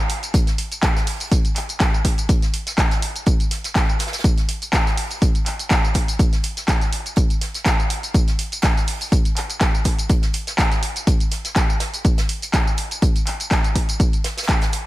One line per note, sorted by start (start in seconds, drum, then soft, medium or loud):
0.09 closed hi-hat medium
0.09 open hi-hat loud
0.23 closed hi-hat medium
0.23 tambourine medium
0.34 kick loud
0.34 closed hi-hat medium
0.34 tambourine medium
0.47 snare soft
0.47 closed hi-hat soft
0.47 tambourine soft
0.58 closed hi-hat medium
0.58 open hi-hat loud
0.72 closed hi-hat medium
0.72 tambourine medium
0.82 kick loud
0.82 snare loud
0.82 clap loud
0.82 closed hi-hat medium
0.82 tambourine medium
0.96 snare soft
0.96 tambourine soft
1.06 open hi-hat medium
1.06 open hi-hat loud
1.20 closed hi-hat soft
1.20 tambourine medium
1.31 kick loud
1.31 closed hi-hat medium
1.31 tambourine medium
1.45 closed hi-hat soft
1.45 tambourine soft
1.56 clap soft
1.56 closed hi-hat medium
1.56 open hi-hat loud
1.69 closed hi-hat soft
1.69 tambourine medium
1.80 kick loud
1.80 snare loud
1.80 clap loud
1.80 closed hi-hat medium
1.80 tambourine medium
1.94 tambourine soft
2.05 kick medium
2.05 closed hi-hat medium
2.05 open hi-hat loud
2.18 closed hi-hat soft
2.18 tambourine medium
2.29 kick loud
2.29 closed hi-hat medium
2.29 tambourine medium
2.42 snare soft
2.42 closed hi-hat soft
2.42 tambourine soft
2.53 closed hi-hat medium
2.53 open hi-hat loud
2.66 snare soft
2.66 closed hi-hat medium
2.66 tambourine medium
2.78 kick loud
2.78 snare loud
2.78 clap loud
2.78 closed hi-hat medium
2.78 tambourine medium
2.91 snare soft
2.91 closed hi-hat soft
2.91 tambourine soft
3.02 closed hi-hat medium
3.02 open hi-hat loud
3.16 closed hi-hat soft
3.16 tambourine medium
3.26 kick loud
3.26 closed hi-hat medium
3.26 tambourine soft
3.40 closed hi-hat soft
3.40 tambourine soft
3.51 snare soft
3.51 closed hi-hat medium
3.51 open hi-hat loud
3.64 snare soft
3.64 closed hi-hat soft
3.64 tambourine medium
3.75 kick loud
3.75 snare loud
3.75 clap loud
3.75 closed hi-hat medium
3.75 tambourine soft
3.89 tambourine soft
3.99 snare medium
3.99 closed hi-hat medium
3.99 open hi-hat loud
4.07 snare medium
4.07 closed hi-hat medium
4.12 snare medium
4.12 closed hi-hat medium
4.12 closed hi-hat soft
4.12 tambourine medium
4.18 snare medium
4.18 closed hi-hat medium
4.24 kick loud
4.24 closed hi-hat medium
4.24 tambourine medium
4.37 snare soft
4.37 closed hi-hat soft
4.37 tambourine soft
4.49 closed hi-hat medium
4.49 open hi-hat loud
4.62 closed hi-hat medium
4.62 tambourine medium
4.73 kick loud
4.73 snare loud
4.73 clap loud
4.73 closed hi-hat medium
4.73 tambourine medium
4.87 snare medium
4.87 tambourine soft
4.97 open hi-hat medium
4.97 open hi-hat loud
5.11 closed hi-hat soft
5.11 tambourine medium
5.22 kick loud
5.22 closed hi-hat medium
5.22 tambourine medium
5.35 closed hi-hat soft
5.35 tambourine soft
5.46 clap soft
5.46 closed hi-hat medium
5.46 open hi-hat loud
5.59 closed hi-hat soft
5.59 tambourine medium
5.70 kick loud
5.70 snare loud
5.70 clap loud
5.70 closed hi-hat medium
5.70 tambourine medium
5.85 tambourine soft
5.94 kick medium
5.94 closed hi-hat medium
5.94 open hi-hat loud
6.08 closed hi-hat soft
6.08 tambourine medium
6.19 kick loud
6.19 closed hi-hat medium
6.19 tambourine medium
6.33 snare soft
6.33 closed hi-hat soft
6.33 tambourine soft
6.43 closed hi-hat medium
6.43 open hi-hat loud
6.57 snare soft
6.57 closed hi-hat soft
6.57 tambourine medium
6.68 kick loud
6.68 snare loud
6.68 clap loud
6.68 closed hi-hat medium
6.68 tambourine medium
6.81 snare soft
6.81 closed hi-hat soft
6.81 tambourine soft
6.92 closed hi-hat medium
6.92 open hi-hat loud
7.06 closed hi-hat soft
7.06 tambourine medium
7.16 kick loud
7.16 closed hi-hat medium
7.16 tambourine medium
7.30 closed hi-hat soft
7.30 tambourine soft
7.41 snare soft
7.41 closed hi-hat medium
7.41 open hi-hat medium
7.54 snare soft
7.54 closed hi-hat soft
7.54 tambourine medium
7.65 kick loud
7.65 snare loud
7.65 clap loud
7.65 closed hi-hat loud
7.65 closed hi-hat medium
7.65 tambourine medium
7.80 tambourine soft
7.90 closed hi-hat medium
7.90 open hi-hat loud
8.03 closed hi-hat soft
8.03 tambourine medium
8.14 kick loud
8.14 closed hi-hat medium
8.14 tambourine medium
8.28 snare soft
8.28 closed hi-hat soft
8.28 tambourine soft
8.39 closed hi-hat medium
8.39 open hi-hat loud
8.52 closed hi-hat soft
8.52 tambourine medium
8.62 kick loud
8.62 snare loud
8.62 clap loud
8.62 closed hi-hat medium
8.62 tambourine medium
8.76 snare medium
8.76 tambourine soft
8.87 open hi-hat medium
8.87 open hi-hat loud
9.01 closed hi-hat soft
9.01 tambourine medium
9.12 kick loud
9.12 closed hi-hat medium
9.12 tambourine medium
9.25 closed hi-hat soft
9.25 tambourine soft
9.37 clap soft
9.37 closed hi-hat medium
9.37 open hi-hat medium
9.50 closed hi-hat soft
9.50 tambourine medium
9.61 kick loud
9.61 snare loud
9.61 clap loud
9.61 closed hi-hat medium
9.61 tambourine medium
9.75 tambourine soft
9.84 kick medium
9.84 closed hi-hat medium
9.84 open hi-hat loud
9.99 closed hi-hat soft
9.99 tambourine medium
10.09 kick loud
10.09 closed hi-hat medium
10.09 tambourine medium
10.22 snare soft
10.22 closed hi-hat soft
10.22 tambourine soft
10.33 closed hi-hat medium
10.33 open hi-hat loud
10.47 snare soft
10.47 closed hi-hat medium
10.47 tambourine medium
10.58 kick loud
10.58 snare loud
10.58 clap loud
10.58 closed hi-hat medium
10.58 tambourine medium
10.71 snare soft
10.71 closed hi-hat soft
10.71 tambourine soft
10.83 closed hi-hat medium
10.83 open hi-hat loud
10.96 closed hi-hat medium
10.96 tambourine medium
11.07 kick loud
11.07 closed hi-hat medium
11.07 tambourine medium
11.20 closed hi-hat soft
11.20 tambourine soft
11.31 snare soft
11.31 closed hi-hat medium
11.31 open hi-hat medium
11.45 snare soft
11.45 closed hi-hat medium
11.45 tambourine medium
11.56 kick loud
11.56 snare loud
11.56 clap loud
11.56 closed hi-hat medium
11.56 tambourine medium
11.70 tambourine soft
11.80 snare loud
11.80 closed hi-hat medium
11.80 open hi-hat medium
11.94 closed hi-hat medium
11.94 tambourine medium
12.04 kick loud
12.04 closed hi-hat medium
12.04 tambourine medium
12.18 snare loud
12.18 closed hi-hat medium
12.18 closed hi-hat soft
12.18 tambourine soft
12.29 open hi-hat loud
12.42 closed hi-hat medium
12.42 tambourine medium
12.53 kick loud
12.53 snare loud
12.53 clap loud
12.53 closed hi-hat medium
12.53 tambourine medium
12.67 tambourine soft
12.77 closed hi-hat medium
12.77 open hi-hat medium
12.91 closed hi-hat medium
12.91 tambourine medium
13.02 kick loud
13.02 closed hi-hat medium
13.02 tambourine medium
13.16 closed hi-hat soft
13.16 tambourine soft
13.26 clap soft
13.26 closed hi-hat medium
13.26 open hi-hat loud
13.40 closed hi-hat medium
13.40 tambourine medium
13.51 kick loud
13.51 snare loud
13.51 clap loud
13.51 closed hi-hat medium
13.51 tambourine medium
13.64 closed hi-hat soft
13.64 tambourine soft
13.75 kick medium
13.75 closed hi-hat medium
13.75 open hi-hat loud
13.89 closed hi-hat medium
13.89 tambourine medium
14.00 kick loud
14.00 closed hi-hat medium
14.00 tambourine medium
14.13 closed hi-hat soft
14.13 tambourine soft
14.24 snare loud
14.24 closed hi-hat medium
14.24 open hi-hat loud
14.37 snare medium
14.37 closed hi-hat medium
14.37 tambourine medium
14.43 snare medium
14.43 closed hi-hat medium
14.48 kick loud
14.48 snare medium
14.48 clap loud
14.48 closed hi-hat medium
14.48 tambourine medium
14.61 snare medium
14.61 closed hi-hat medium
14.61 closed hi-hat soft
14.61 tambourine soft
14.72 closed hi-hat medium
14.72 open hi-hat medium